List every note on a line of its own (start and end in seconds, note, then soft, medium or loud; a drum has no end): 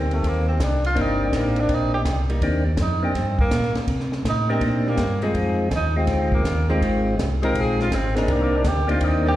0.00 0.22 D2 medium
0.00 0.52 G3 soft
0.00 0.52 A#3 medium
0.00 0.53 A#3 soft
0.00 0.15 C4 medium
0.00 0.52 C4 medium
0.00 0.53 D#4 medium
0.00 0.53 G4 medium
0.11 0.29 A3 medium
0.11 ride soft
0.23 0.58 D#2 medium
0.23 kick soft
0.23 ride medium
0.28 0.48 A#3 medium
0.48 0.65 C4 medium
0.60 0.95 C2 medium
0.60 0.85 D4 medium
0.60 kick soft
0.60 snare medium
0.60 hi-hat pedal medium
0.60 ride medium
0.84 1.02 F4 medium
0.84 ride soft
0.95 1.31 G1 medium
0.95 1.18 G3 medium
0.95 1.97 A#3 medium
0.95 1.18 A#3 medium
0.95 1.98 C4 medium
0.95 1.98 D4 soft
0.95 1.98 D#4 soft
0.95 1.18 D#4 medium
0.95 1.98 G4 medium
0.95 kick soft
0.95 ride medium
1.01 1.22 D#4 medium
1.25 1.38 G3 medium
1.31 1.67 A1 medium
1.31 kick soft
1.31 snare medium
1.31 hi-hat pedal medium
1.31 ride medium
1.37 1.62 A#3 medium
1.56 ride soft
1.61 1.76 D4 medium
1.68 2.04 A#1 medium
1.68 kick soft
1.68 ride medium
1.74 1.93 D#4 medium
1.94 2.01 G4 medium
2.04 2.40 C2 medium
2.04 kick soft
2.04 snare medium
2.04 hi-hat pedal medium
2.04 ride medium
2.30 2.41 G3 medium
2.30 2.41 A#3 medium
2.30 2.41 D#4 medium
2.30 ride soft
2.41 2.77 D#2 medium
2.41 2.64 A#3 medium
2.41 2.64 C4 soft
2.41 2.64 D4 soft
2.41 2.64 D#4 medium
2.41 2.64 G4 medium
2.41 kick soft
2.41 ride medium
2.77 3.13 F2 medium
2.77 kick soft
2.77 snare medium
2.77 hi-hat pedal soft
2.77 ride medium
2.82 3.03 D#4 medium
3.02 3.14 A#3 medium
3.02 3.14 C4 medium
3.02 3.38 C4 medium
3.02 3.14 D4 medium
3.02 3.14 D#4 medium
3.02 3.15 G4 medium
3.14 3.50 G2 medium
3.14 kick soft
3.14 snare soft
3.14 ride soft
3.39 3.74 A#3 medium
3.39 kick soft
3.51 3.73 A#2 medium
3.51 kick soft
3.51 snare medium
3.51 hi-hat pedal medium
3.51 ride medium
3.63 snare soft
3.74 3.81 A#2 soft
3.74 snare soft
3.74 ride soft
3.87 4.23 C3 medium
3.87 kick soft
3.87 ride medium
4.00 snare soft
4.12 snare soft
4.24 4.60 A2 medium
4.24 kick soft
4.24 snare medium
4.24 hi-hat pedal medium
4.24 ride medium
4.29 4.50 D#4 medium
4.49 4.60 G3 medium
4.49 4.96 A#3 medium
4.49 4.61 A#3 medium
4.49 4.96 C4 medium
4.49 4.84 C4 medium
4.49 4.96 D4 medium
4.49 4.96 D#4 soft
4.49 4.61 D#4 medium
4.49 4.96 G4 medium
4.61 4.97 A#2 medium
4.61 kick soft
4.61 ride soft
4.87 4.97 G3 soft
4.87 4.98 A#3 medium
4.87 5.21 A#3 medium
4.87 4.98 D#4 medium
4.97 5.33 G2 medium
4.97 kick soft
4.97 snare medium
4.97 hi-hat pedal soft
4.97 ride medium
5.22 5.33 D#3 medium
5.22 5.69 G#3 medium
5.22 5.34 G#3 medium
5.22 5.69 C4 medium
5.22 5.34 C4 medium
5.22 5.69 D#4 soft
5.22 5.69 F4 soft
5.22 5.69 G#4 medium
5.22 ride soft
5.34 5.70 F2 medium
5.34 kick soft
5.34 ride soft
5.71 6.07 D#2 medium
5.71 kick soft
5.71 snare medium
5.71 hi-hat pedal medium
5.71 ride medium
5.76 5.96 D#4 medium
5.96 6.42 G#3 medium
5.96 6.42 C4 medium
5.96 6.31 C4 medium
5.96 6.42 D#4 medium
5.96 6.43 F4 soft
5.96 6.43 G4 medium
6.07 6.43 D2 medium
6.07 kick soft
6.07 snare soft
6.07 ride medium
6.32 6.67 A#3 medium
6.32 kick soft
6.44 6.80 D#2 medium
6.44 kick soft
6.44 snare medium
6.44 hi-hat pedal soft
6.44 ride medium
6.69 6.81 D#3 medium
6.69 7.16 G#3 medium
6.69 6.82 G#3 medium
6.69 7.16 C4 medium
6.69 6.82 C4 medium
6.69 7.16 D#4 medium
6.69 7.16 F4 medium
6.69 7.16 G4 medium
6.81 7.16 G#1 medium
6.81 7.03 D#3 soft
6.81 7.04 G#3 medium
6.81 7.04 C4 medium
6.81 kick soft
6.81 ride medium
7.18 7.53 C2 medium
7.18 kick soft
7.18 snare medium
7.18 hi-hat pedal soft
7.18 ride medium
7.42 7.54 D#3 medium
7.42 7.89 G#3 medium
7.42 7.54 G#3 medium
7.42 7.89 C4 medium
7.42 7.54 C4 medium
7.42 7.89 D#4 medium
7.42 7.89 F4 medium
7.42 7.90 G4 medium
7.42 7.62 A#4 medium
7.42 ride soft
7.54 7.90 A#1 medium
7.54 kick soft
7.54 ride medium
7.60 7.82 G#4 medium
7.80 7.96 F4 medium
7.80 snare soft
7.91 8.27 G#1 medium
7.91 8.18 C4 medium
7.91 kick soft
7.91 snare medium
7.91 hi-hat pedal medium
7.91 ride medium
8.16 8.32 G#3 medium
8.16 8.63 A#3 medium
8.16 8.63 C4 medium
8.16 8.63 D4 medium
8.16 8.63 D#4 medium
8.16 8.63 A#4 medium
8.16 snare medium
8.16 ride soft
8.28 8.63 C2 medium
8.28 8.50 G3 medium
8.28 8.43 G3 medium
8.28 8.50 A#3 medium
8.28 8.51 D#4 medium
8.28 kick soft
8.28 ride medium
8.42 8.58 A#3 medium
8.57 8.69 D4 medium
8.64 9.00 D2 medium
8.64 8.90 G4 medium
8.64 kick soft
8.64 snare medium
8.64 hi-hat pedal medium
8.64 ride medium
8.87 9.34 A#3 medium
8.87 9.35 C4 medium
8.87 9.35 D4 medium
8.87 9.35 D#4 medium
8.87 9.06 F4 medium
8.87 9.35 G4 medium
8.87 ride soft
9.01 9.36 D#2 medium
9.01 9.27 D#4 medium
9.01 kick soft
9.01 ride medium
9.26 9.36 G3 medium
9.26 9.36 A#3 medium
9.26 9.36 D#4 medium
9.26 9.35 G4 loud